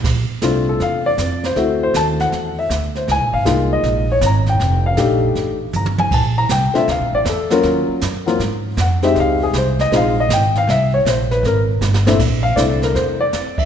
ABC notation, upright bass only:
X:1
M:4/4
L:1/8
Q:"Swing" 1/4=158
K:Bbdor
V:1 name="Upright bass" clef=bass
B,,, z C,,2 =E,,2 F,,2 | =D,,2 E,,2 =E,,2 D,,2 | (3D,, B,,, A,,, C,,2 B,,,2 A,,,2 | F,,,2 B,,,2 =A,,,2 G,,,2 |
B,,,2 C,, z (3=D,, B,,, =A,,, =E,,2 | E,, z _G,,2 A,,2 F,,2 | D,,2 C,,2 B,,,2 A,,,2 | C,,2 B,,,2 A,,,2 G,,,2 |
B,,,2 C,,2 =E,,2 F,,2 |]